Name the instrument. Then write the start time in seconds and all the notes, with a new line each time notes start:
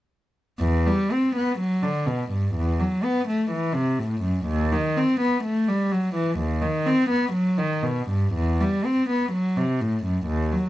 cello
0.59 E2
0.87 G3
1.12 C4
1.36 B3
1.59 F#3
1.83 D3
2.07 B2
2.31 G2
2.55 E2
2.80 F#3
3.04 B3
3.28 A3
3.51 E3
3.74 C3
3.99 A2
4.23 F#2
4.47 D#2
4.73 D#3
4.97 C4
5.21 B3
5.44 A3
5.68 G3
5.92 F#3
6.15 E3
6.39 D#2
6.62 D#3
6.86 C4
7.10 B3
7.33 F#3
7.58 D#3
7.83 B2
8.09 G2
8.34 E2
8.60 G3
8.85 C4
9.10 B3
9.33 F#3
9.57 C3
9.81 A2
10.05 F#2
10.26 D#2
10.52 F#3